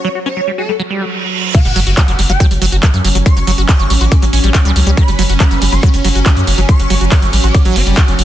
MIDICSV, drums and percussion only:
0, 0, Header, 1, 2, 480
1, 0, Start_track
1, 0, Tempo, 428571
1, 1730, Time_signature, 4, 2, 24, 8
1, 9229, End_track
2, 0, Start_track
2, 0, Title_t, "Drums"
2, 1731, Note_on_c, 9, 36, 120
2, 1731, Note_on_c, 9, 42, 99
2, 1731, Note_on_c, 9, 49, 107
2, 1843, Note_off_c, 9, 36, 0
2, 1843, Note_off_c, 9, 42, 0
2, 1843, Note_off_c, 9, 49, 0
2, 1850, Note_on_c, 9, 42, 55
2, 1962, Note_off_c, 9, 42, 0
2, 1970, Note_on_c, 9, 46, 108
2, 2082, Note_off_c, 9, 46, 0
2, 2091, Note_on_c, 9, 42, 55
2, 2203, Note_off_c, 9, 42, 0
2, 2210, Note_on_c, 9, 36, 127
2, 2210, Note_on_c, 9, 39, 124
2, 2210, Note_on_c, 9, 42, 98
2, 2322, Note_off_c, 9, 36, 0
2, 2322, Note_off_c, 9, 39, 0
2, 2322, Note_off_c, 9, 42, 0
2, 2330, Note_on_c, 9, 42, 57
2, 2442, Note_off_c, 9, 42, 0
2, 2450, Note_on_c, 9, 46, 105
2, 2562, Note_off_c, 9, 46, 0
2, 2570, Note_on_c, 9, 42, 56
2, 2682, Note_off_c, 9, 42, 0
2, 2690, Note_on_c, 9, 36, 123
2, 2690, Note_on_c, 9, 42, 98
2, 2802, Note_off_c, 9, 36, 0
2, 2802, Note_off_c, 9, 42, 0
2, 2811, Note_on_c, 9, 42, 54
2, 2923, Note_off_c, 9, 42, 0
2, 2931, Note_on_c, 9, 46, 114
2, 3043, Note_off_c, 9, 46, 0
2, 3050, Note_on_c, 9, 42, 54
2, 3162, Note_off_c, 9, 42, 0
2, 3170, Note_on_c, 9, 36, 122
2, 3170, Note_on_c, 9, 39, 121
2, 3170, Note_on_c, 9, 42, 94
2, 3282, Note_off_c, 9, 36, 0
2, 3282, Note_off_c, 9, 39, 0
2, 3282, Note_off_c, 9, 42, 0
2, 3290, Note_on_c, 9, 42, 56
2, 3402, Note_off_c, 9, 42, 0
2, 3410, Note_on_c, 9, 46, 104
2, 3522, Note_off_c, 9, 46, 0
2, 3530, Note_on_c, 9, 42, 57
2, 3642, Note_off_c, 9, 42, 0
2, 3650, Note_on_c, 9, 36, 127
2, 3650, Note_on_c, 9, 42, 98
2, 3762, Note_off_c, 9, 36, 0
2, 3762, Note_off_c, 9, 42, 0
2, 3770, Note_on_c, 9, 42, 53
2, 3882, Note_off_c, 9, 42, 0
2, 3890, Note_on_c, 9, 46, 111
2, 4002, Note_off_c, 9, 46, 0
2, 4010, Note_on_c, 9, 42, 51
2, 4122, Note_off_c, 9, 42, 0
2, 4130, Note_on_c, 9, 39, 121
2, 4130, Note_on_c, 9, 42, 89
2, 4131, Note_on_c, 9, 36, 127
2, 4242, Note_off_c, 9, 39, 0
2, 4242, Note_off_c, 9, 42, 0
2, 4243, Note_off_c, 9, 36, 0
2, 4250, Note_on_c, 9, 42, 51
2, 4362, Note_off_c, 9, 42, 0
2, 4370, Note_on_c, 9, 46, 108
2, 4482, Note_off_c, 9, 46, 0
2, 4490, Note_on_c, 9, 42, 55
2, 4602, Note_off_c, 9, 42, 0
2, 4610, Note_on_c, 9, 42, 96
2, 4611, Note_on_c, 9, 36, 123
2, 4722, Note_off_c, 9, 42, 0
2, 4723, Note_off_c, 9, 36, 0
2, 4730, Note_on_c, 9, 42, 54
2, 4842, Note_off_c, 9, 42, 0
2, 4850, Note_on_c, 9, 46, 114
2, 4962, Note_off_c, 9, 46, 0
2, 4970, Note_on_c, 9, 42, 53
2, 5082, Note_off_c, 9, 42, 0
2, 5090, Note_on_c, 9, 39, 127
2, 5090, Note_on_c, 9, 42, 92
2, 5091, Note_on_c, 9, 36, 124
2, 5202, Note_off_c, 9, 39, 0
2, 5202, Note_off_c, 9, 42, 0
2, 5203, Note_off_c, 9, 36, 0
2, 5210, Note_on_c, 9, 42, 54
2, 5322, Note_off_c, 9, 42, 0
2, 5330, Note_on_c, 9, 46, 107
2, 5442, Note_off_c, 9, 46, 0
2, 5451, Note_on_c, 9, 42, 53
2, 5563, Note_off_c, 9, 42, 0
2, 5571, Note_on_c, 9, 36, 127
2, 5571, Note_on_c, 9, 42, 90
2, 5683, Note_off_c, 9, 36, 0
2, 5683, Note_off_c, 9, 42, 0
2, 5691, Note_on_c, 9, 42, 55
2, 5803, Note_off_c, 9, 42, 0
2, 5811, Note_on_c, 9, 46, 117
2, 5923, Note_off_c, 9, 46, 0
2, 5931, Note_on_c, 9, 42, 53
2, 6043, Note_off_c, 9, 42, 0
2, 6051, Note_on_c, 9, 36, 127
2, 6051, Note_on_c, 9, 39, 124
2, 6051, Note_on_c, 9, 42, 87
2, 6163, Note_off_c, 9, 36, 0
2, 6163, Note_off_c, 9, 39, 0
2, 6163, Note_off_c, 9, 42, 0
2, 6171, Note_on_c, 9, 42, 53
2, 6283, Note_off_c, 9, 42, 0
2, 6291, Note_on_c, 9, 46, 112
2, 6403, Note_off_c, 9, 46, 0
2, 6411, Note_on_c, 9, 42, 52
2, 6523, Note_off_c, 9, 42, 0
2, 6531, Note_on_c, 9, 36, 127
2, 6531, Note_on_c, 9, 42, 89
2, 6643, Note_off_c, 9, 36, 0
2, 6643, Note_off_c, 9, 42, 0
2, 6651, Note_on_c, 9, 42, 53
2, 6763, Note_off_c, 9, 42, 0
2, 6771, Note_on_c, 9, 46, 120
2, 6883, Note_off_c, 9, 46, 0
2, 6891, Note_on_c, 9, 42, 50
2, 7003, Note_off_c, 9, 42, 0
2, 7011, Note_on_c, 9, 36, 126
2, 7011, Note_on_c, 9, 39, 127
2, 7011, Note_on_c, 9, 42, 90
2, 7123, Note_off_c, 9, 36, 0
2, 7123, Note_off_c, 9, 39, 0
2, 7123, Note_off_c, 9, 42, 0
2, 7131, Note_on_c, 9, 42, 52
2, 7243, Note_off_c, 9, 42, 0
2, 7250, Note_on_c, 9, 46, 111
2, 7362, Note_off_c, 9, 46, 0
2, 7371, Note_on_c, 9, 42, 52
2, 7483, Note_off_c, 9, 42, 0
2, 7491, Note_on_c, 9, 36, 127
2, 7491, Note_on_c, 9, 42, 88
2, 7603, Note_off_c, 9, 36, 0
2, 7603, Note_off_c, 9, 42, 0
2, 7611, Note_on_c, 9, 42, 52
2, 7723, Note_off_c, 9, 42, 0
2, 7731, Note_on_c, 9, 46, 108
2, 7843, Note_off_c, 9, 46, 0
2, 7851, Note_on_c, 9, 42, 48
2, 7963, Note_off_c, 9, 42, 0
2, 7971, Note_on_c, 9, 36, 127
2, 7971, Note_on_c, 9, 39, 116
2, 7971, Note_on_c, 9, 42, 86
2, 8083, Note_off_c, 9, 36, 0
2, 8083, Note_off_c, 9, 39, 0
2, 8083, Note_off_c, 9, 42, 0
2, 8091, Note_on_c, 9, 42, 52
2, 8203, Note_off_c, 9, 42, 0
2, 8211, Note_on_c, 9, 46, 110
2, 8323, Note_off_c, 9, 46, 0
2, 8330, Note_on_c, 9, 42, 53
2, 8442, Note_off_c, 9, 42, 0
2, 8451, Note_on_c, 9, 36, 122
2, 8451, Note_on_c, 9, 42, 83
2, 8563, Note_off_c, 9, 36, 0
2, 8563, Note_off_c, 9, 42, 0
2, 8571, Note_on_c, 9, 42, 49
2, 8683, Note_off_c, 9, 42, 0
2, 8691, Note_on_c, 9, 46, 109
2, 8803, Note_off_c, 9, 46, 0
2, 8811, Note_on_c, 9, 42, 52
2, 8923, Note_off_c, 9, 42, 0
2, 8930, Note_on_c, 9, 39, 120
2, 8930, Note_on_c, 9, 42, 86
2, 8931, Note_on_c, 9, 36, 122
2, 9042, Note_off_c, 9, 39, 0
2, 9042, Note_off_c, 9, 42, 0
2, 9043, Note_off_c, 9, 36, 0
2, 9051, Note_on_c, 9, 42, 49
2, 9163, Note_off_c, 9, 42, 0
2, 9171, Note_on_c, 9, 46, 110
2, 9229, Note_off_c, 9, 46, 0
2, 9229, End_track
0, 0, End_of_file